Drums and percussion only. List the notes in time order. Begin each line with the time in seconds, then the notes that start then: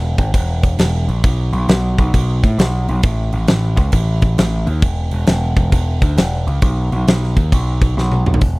0.18 kick, crash
0.34 kick, crash
0.63 kick, crash
0.79 snare, crash
1.09 crash
1.24 kick, crash
1.53 crash
1.69 snare, crash
1.98 kick, crash
2.14 kick, crash
2.44 kick, crash
2.59 snare, crash
2.88 crash
3.03 kick, crash
3.32 crash
3.47 snare, crash
3.77 kick, crash
3.92 kick, crash
4.22 kick, crash
4.38 snare, crash
4.67 crash
4.82 kick, crash
5.11 crash
5.27 snare, crash
5.56 kick, crash
5.72 kick, crash
6.02 kick, crash
6.17 snare, crash
6.48 crash
6.62 kick, crash
6.92 crash
7.08 snare, crash
7.23 snare
7.37 kick, crash
7.52 kick, crash
7.82 kick, crash
7.98 snare
8.12 high tom
8.26 mid tom
8.34 floor tom
8.41 kick, open hi-hat